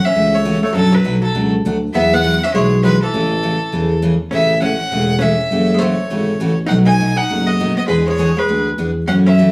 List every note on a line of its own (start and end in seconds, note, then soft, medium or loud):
0.05 0.34 C#4 medium
0.05 0.37 E5 loud
0.15 0.62 C#2 medium
0.15 0.35 C#3 medium
0.15 0.35 E3 medium
0.15 0.36 A3 medium
0.15 0.36 C#4 medium
0.15 0.36 F#4 medium
0.34 0.62 A3 medium
0.34 0.64 C#5 loud
0.45 0.56 C#3 medium
0.45 0.56 E3 medium
0.45 0.56 A3 medium
0.45 0.57 C#4 medium
0.45 0.56 F#4 medium
0.63 0.73 A3 medium
0.63 0.74 C#5 medium
0.73 0.98 F#2 medium
0.73 0.95 B2 medium
0.73 0.91 F#3 medium
0.73 0.95 F#3 medium
0.73 0.95 A3 medium
0.73 0.95 D4 medium
0.73 0.95 F#4 medium
0.73 0.96 A4 medium
0.92 1.21 F#3 medium
0.92 1.23 B4 medium
1.04 1.29 B1 medium
1.04 1.16 B2 medium
1.04 1.16 F#3 medium
1.04 1.16 A3 medium
1.04 1.16 D4 medium
1.04 1.16 F#4 medium
1.22 1.50 F#3 medium
1.22 1.51 A4 medium
1.34 1.60 C#2 medium
1.34 1.55 B2 medium
1.34 1.55 F#3 medium
1.34 1.55 A3 medium
1.34 1.55 D4 medium
1.34 1.55 F#4 medium
1.65 1.90 D2 medium
1.65 1.76 B2 medium
1.65 1.76 F#3 medium
1.65 1.76 A3 medium
1.65 1.76 D4 medium
1.65 1.76 F#4 medium
1.93 2.42 E2 medium
1.93 2.14 E3 medium
1.93 2.14 F#3 medium
1.93 2.15 B3 medium
1.93 2.12 B3 medium
1.93 2.15 E4 medium
1.93 2.15 G#4 medium
1.93 2.15 E5 loud
2.14 2.44 B3 medium
2.14 2.45 F#5 loud
2.24 2.35 E3 medium
2.24 2.35 F#3 medium
2.24 2.35 B3 medium
2.24 2.35 E4 medium
2.24 2.35 G#4 medium
2.44 2.54 C#4 medium
2.44 2.54 E5 medium
2.54 3.01 B1 medium
2.54 2.74 E3 soft
2.54 2.74 F#3 medium
2.54 2.82 G#3 medium
2.54 2.74 B3 medium
2.54 2.74 E4 medium
2.54 2.75 G#4 medium
2.54 2.81 C#5 medium
2.83 2.95 E3 medium
2.83 2.95 F#3 medium
2.83 3.00 G#3 medium
2.83 2.95 B3 medium
2.83 2.95 E4 medium
2.83 2.95 G#4 medium
2.83 3.01 B4 loud
3.02 3.99 E3 medium
3.02 3.98 A4 medium
3.13 3.61 A1 medium
3.13 3.34 C#3 medium
3.13 3.34 E3 medium
3.13 3.34 A3 medium
3.13 3.34 C#4 medium
3.13 3.34 G#4 medium
3.43 3.54 C#3 medium
3.43 3.54 E3 medium
3.43 3.54 A3 medium
3.43 3.55 C#4 medium
3.43 3.55 G#4 medium
3.72 4.21 E2 medium
3.72 3.93 C#3 soft
3.72 3.93 E3 medium
3.72 3.93 A3 medium
3.72 3.93 C#4 medium
3.72 3.93 G#4 medium
4.02 4.13 C#3 medium
4.02 4.14 E3 medium
4.02 4.14 A3 medium
4.02 4.14 C#4 medium
4.02 4.14 G#4 medium
4.31 4.80 A1 medium
4.31 4.52 C#3 medium
4.31 4.53 E3 medium
4.31 4.53 A3 medium
4.31 4.59 C#4 medium
4.31 4.53 C#4 medium
4.31 4.53 G#4 medium
4.31 4.60 E5 medium
4.61 4.73 C#3 medium
4.61 4.73 E3 medium
4.61 4.73 A3 medium
4.61 4.73 C#4 medium
4.61 5.17 C#4 medium
4.61 4.73 G#4 medium
4.61 5.23 F#5 loud
4.91 5.40 E1 medium
4.91 5.12 C#3 medium
4.91 5.12 E3 medium
4.91 5.12 A3 medium
4.91 5.12 C#4 medium
4.91 5.12 G#4 medium
5.19 5.32 C#3 medium
5.19 5.32 E3 medium
5.19 5.32 A3 medium
5.19 5.74 C#4 medium
5.19 5.33 C#4 medium
5.19 5.33 G#4 medium
5.19 5.76 E5 medium
5.51 5.98 F#1 medium
5.51 5.71 C#3 medium
5.51 5.72 E3 medium
5.51 5.72 A3 medium
5.51 5.72 C#4 medium
5.51 5.72 F#4 medium
5.74 5.78 G#3 medium
5.74 5.81 C5 medium
5.78 5.92 C#3 medium
5.78 5.92 E3 medium
5.78 6.58 A3 medium
5.78 5.93 A3 medium
5.78 5.93 C#4 medium
5.78 5.93 F#4 medium
5.78 6.58 C#5 medium
6.10 6.36 G#1 medium
6.10 6.31 C#3 medium
6.10 6.31 E3 medium
6.10 6.31 A3 medium
6.10 6.31 C#4 medium
6.10 6.31 F#4 medium
6.40 6.66 A1 medium
6.40 6.52 C#3 medium
6.40 6.52 E3 medium
6.40 6.52 A3 medium
6.40 6.52 C#4 medium
6.40 6.52 F#4 medium
6.66 7.18 B1 medium
6.66 6.91 B2 medium
6.66 6.91 F#3 medium
6.66 6.72 D#4 medium
6.66 6.77 F#5 medium
6.71 6.91 A3 medium
6.71 6.91 D#4 medium
6.71 6.91 F#4 medium
6.85 7.15 D#4 medium
6.85 7.18 G#5 loud
7.00 7.11 B2 medium
7.00 7.12 F#3 medium
7.00 7.12 A3 medium
7.00 7.12 D#4 medium
7.00 7.12 F#4 medium
7.16 7.47 D#4 medium
7.16 7.48 F#5 loud
7.30 7.77 F#1 medium
7.30 7.50 B2 medium
7.30 7.50 F#3 medium
7.30 7.50 A3 medium
7.30 7.51 D#4 medium
7.30 7.51 F#4 medium
7.47 7.76 B3 medium
7.47 7.76 D#5 loud
7.60 7.71 B2 medium
7.60 7.71 F#3 medium
7.60 7.71 A3 medium
7.60 7.71 D#4 medium
7.60 7.72 F#4 medium
7.77 7.87 B3 medium
7.77 7.87 D#5 medium
7.88 8.37 E2 medium
7.88 8.09 E3 medium
7.88 8.06 G#3 medium
7.88 8.10 B3 medium
7.88 8.10 D4 medium
7.88 8.10 G#4 medium
7.88 8.06 B4 medium
8.08 8.36 G#3 medium
8.08 8.40 C#5 loud
8.18 8.30 E3 medium
8.18 8.30 B3 medium
8.18 8.30 D4 medium
8.18 8.31 G#4 medium
8.37 8.67 G#3 medium
8.37 8.68 B4 medium
8.48 8.74 D2 medium
8.48 8.69 E3 medium
8.48 8.69 B3 medium
8.48 8.69 D4 medium
8.48 8.69 G#4 medium
8.78 9.04 E2 medium
8.78 8.90 E3 medium
8.78 8.90 B3 medium
8.78 8.90 D4 medium
8.78 8.90 G#4 medium
9.08 9.52 F#2 medium
9.08 9.29 C#3 medium
9.08 9.29 E3 medium
9.08 9.29 A3 medium
9.08 9.13 C#4 medium
9.08 9.29 C#4 medium
9.08 9.29 F#4 medium
9.08 9.16 F#5 medium
9.26 9.52 C#4 medium
9.26 9.52 E5 medium
9.38 9.50 C#3 medium
9.38 9.50 E3 medium
9.38 9.50 A3 medium
9.38 9.50 C#4 medium
9.38 9.50 F#4 medium